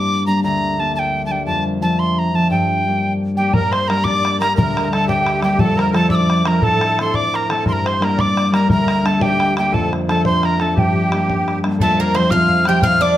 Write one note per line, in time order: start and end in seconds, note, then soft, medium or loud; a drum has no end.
0.00 0.50 G2 medium
0.00 0.26 G3 soft
0.00 0.27 A#3 soft
0.00 2.28 C4 soft
0.00 0.27 D4 soft
0.00 0.26 D6 loud
0.27 0.77 G3 soft
0.27 0.78 A#3 soft
0.27 0.79 D4 medium
0.27 0.43 A#5 medium
0.44 1.52 D2 medium
0.44 0.81 A#5 medium
0.78 1.29 G3 soft
0.78 1.30 A#3 soft
0.78 1.31 D4 medium
0.78 0.95 A5 medium
0.96 1.25 G5 medium
0.96 1.00 A5 medium
1.26 1.52 G3 soft
1.26 1.33 A5 medium
1.31 1.88 A#3 soft
1.31 1.81 D4 soft
1.31 1.45 G5 medium
1.46 2.55 F2 medium
1.46 1.64 A5 medium
1.81 2.33 F3 soft
1.81 2.34 A3 soft
1.81 2.34 D4 soft
1.81 2.01 A5 medium
1.99 2.20 C6 medium
2.19 2.37 A#5 medium
2.33 2.55 F3 soft
2.33 2.93 A3 soft
2.33 2.87 D4 soft
2.33 2.50 A5 medium
2.51 3.53 G2 medium
2.51 3.13 G5 medium
2.86 3.34 G3 soft
2.86 3.37 A#3 soft
2.86 3.40 D4 soft
3.35 3.58 G3 soft
3.35 3.88 A#3 soft
3.35 3.52 G4 medium
3.35 3.55 G5 medium
3.40 3.89 D4 soft
3.54 4.61 G2 medium
3.54 3.73 A#4 medium
3.54 3.73 A#5 medium
3.54 bodhran medium
3.72 3.89 C5 medium
3.72 3.89 C6 medium
3.72 bodhran medium
3.88 4.40 G3 soft
3.88 4.41 A#3 soft
3.88 4.42 D4 soft
3.88 4.03 A#4 medium
3.88 4.06 A#5 medium
3.88 bodhran medium
4.04 4.41 D5 medium
4.04 4.39 D6 loud
4.04 bodhran medium
4.25 bodhran medium
4.40 4.90 G3 soft
4.40 4.92 A#3 soft
4.40 4.92 D4 soft
4.40 4.47 A#4 medium
4.40 4.55 A#5 medium
4.40 bodhran medium
4.56 5.64 D2 medium
4.56 4.89 A#4 medium
4.56 4.94 A#5 medium
4.56 bodhran medium
4.77 bodhran medium
4.92 5.41 G3 soft
4.92 5.42 A#3 soft
4.92 5.42 D4 soft
4.92 5.07 A4 medium
4.92 5.08 A5 medium
4.92 bodhran medium
5.06 5.18 G4 medium
5.06 5.41 G5 medium
5.06 bodhran medium
5.20 5.31 G4 medium
5.26 bodhran medium
5.32 5.41 G4 medium
5.39 5.64 G3 soft
5.39 6.00 A#3 soft
5.39 5.43 A4 soft
5.39 bodhran medium
5.43 5.94 D4 soft
5.43 5.60 G4 medium
5.43 5.61 G5 medium
5.59 6.68 F2 medium
5.59 5.79 A4 medium
5.59 5.79 A5 medium
5.59 bodhran medium
5.77 5.94 A#4 medium
5.77 5.94 A#5 medium
5.77 bodhran medium
5.93 6.44 F3 medium
5.93 6.46 A3 soft
5.93 6.46 D4 soft
5.93 6.09 A4 medium
5.93 6.10 A5 medium
5.93 bodhran medium
6.09 6.42 D5 medium
6.09 6.16 E6 medium
6.09 bodhran medium
6.15 6.49 D6 loud
6.30 bodhran medium
6.44 6.68 F3 soft
6.44 6.98 A3 soft
6.44 8.00 D4 soft
6.44 6.62 A#4 medium
6.44 6.66 A#5 medium
6.44 bodhran medium
6.61 7.71 A2 medium
6.61 7.15 A4 medium
6.61 6.98 A5 medium
6.61 bodhran medium
6.81 bodhran medium
6.98 7.49 E3 soft
6.98 7.50 A3 soft
6.98 7.50 C4 soft
6.98 7.17 C6 medium
6.98 bodhran medium
7.14 7.33 D5 medium
7.14 7.37 D6 loud
7.14 bodhran medium
7.33 7.48 A#4 medium
7.33 7.53 A#5 medium
7.33 bodhran medium
7.49 7.71 E3 soft
7.49 8.06 A3 soft
7.49 10.51 C4 soft
7.49 7.65 A4 medium
7.49 7.67 A5 medium
7.49 bodhran medium
7.65 8.74 G2 medium
7.65 7.85 A#4 medium
7.65 7.74 C6 medium
7.65 bodhran medium
7.73 7.89 A#5 medium
7.85 8.02 C5 medium
7.85 8.05 C6 medium
7.85 bodhran medium
8.00 8.51 G3 soft
8.00 8.52 A#3 soft
8.00 8.53 D4 soft
8.00 8.18 A#4 medium
8.00 bodhran medium
8.04 8.22 A#5 medium
8.17 8.54 D5 medium
8.17 8.53 D6 medium
8.17 bodhran medium
8.37 bodhran medium
8.52 9.03 G3 soft
8.52 9.04 A#3 soft
8.52 9.05 D4 medium
8.52 8.67 A#4 medium
8.52 8.69 A#5 medium
8.52 bodhran medium
8.68 9.78 D2 medium
8.68 9.05 A#4 medium
8.68 9.07 A#5 medium
8.68 bodhran medium
8.88 bodhran medium
9.04 9.55 G3 soft
9.04 9.56 A#3 soft
9.04 9.56 D4 soft
9.04 9.20 A4 medium
9.04 9.24 A5 medium
9.04 bodhran medium
9.20 9.54 G4 medium
9.20 9.57 G5 medium
9.20 bodhran medium
9.40 bodhran medium
9.55 9.78 G3 soft
9.55 10.14 A#3 soft
9.55 10.08 D4 soft
9.55 9.73 G4 medium
9.55 9.75 G5 medium
9.55 bodhran medium
9.72 10.82 F2 medium
9.72 9.90 A4 medium
9.72 9.92 A5 medium
9.72 bodhran medium
9.93 bodhran soft
10.08 10.59 F3 soft
10.08 10.60 A3 soft
10.08 10.61 D4 soft
10.08 10.25 A4 medium
10.08 10.24 A5 medium
10.08 bodhran medium
10.24 10.44 C5 medium
10.24 10.47 C6 loud
10.24 bodhran medium
10.41 10.58 A#4 medium
10.41 10.63 A#5 medium
10.41 bodhran medium
10.58 10.82 F3 soft
10.58 11.19 A3 soft
10.58 11.13 D4 soft
10.58 10.74 A4 medium
10.58 10.81 A5 medium
10.58 bodhran medium
10.75 11.85 G2 medium
10.75 11.59 G4 medium
10.75 bodhran medium
10.79 11.59 G5 medium
11.12 11.62 G3 soft
11.12 11.64 A#3 soft
11.12 11.64 D4 soft
11.12 bodhran medium
11.30 bodhran medium
11.48 bodhran soft
11.63 11.85 G3 soft
11.63 12.22 A#3 soft
11.63 13.17 D4 soft
11.63 bodhran medium
11.79 12.82 F2 medium
11.79 11.98 A3 medium
11.79 11.99 A4 medium
11.79 12.02 A5 medium
11.79 bodhran medium
11.99 12.14 A#3 medium
11.99 12.16 A#4 medium
11.99 12.18 A#5 medium
11.99 bodhran soft
12.14 12.31 F3 soft
12.14 12.32 A3 soft
12.14 12.32 C4 medium
12.14 12.33 C4 soft
12.14 12.30 C5 medium
12.14 12.32 C6 medium
12.14 bodhran medium
12.31 12.66 F3 medium
12.31 12.67 A3 medium
12.31 12.68 C4 medium
12.31 12.65 F4 medium
12.31 12.64 F5 medium
12.31 12.69 F6 loud
12.31 bodhran medium
12.49 bodhran soft
12.65 12.89 F3 soft
12.65 13.17 A3 soft
12.65 13.17 C4 soft
12.65 12.83 G4 medium
12.65 12.84 G5 loud
12.65 12.82 G6 medium
12.65 bodhran medium
12.82 13.17 F2 medium
12.82 13.00 F4 medium
12.82 13.03 F5 medium
12.82 13.03 F6 loud
12.82 bodhran medium
13.01 13.17 D4 medium
13.01 13.17 D5 medium
13.01 13.17 D6 medium
13.01 bodhran soft